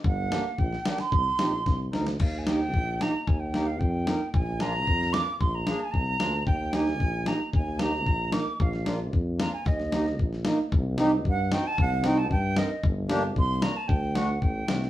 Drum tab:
CC |--------|--------|x-------|--------|
SD |--o--ooo|--o-o-oo|--o---o-|--o---o-|
BD |o---o---|o---o---|o---o---|o---o---|

CC |--------|--------|--------|--------|
SD |--o--oo-|--o---o-|--oo--o-|--o---o-|
BD |o---o---|o---o---|o---o---|o---o---|

CC |--------|--------|--------|--------|
SD |-oo---o-|oooo-oo-|--o---o-|--o---o-|
BD |o---o---|o---o---|o---o---|o---o---|

CC |--------|--------|
SD |--o---o-|--o---oo|
BD |o---o---|o---o---|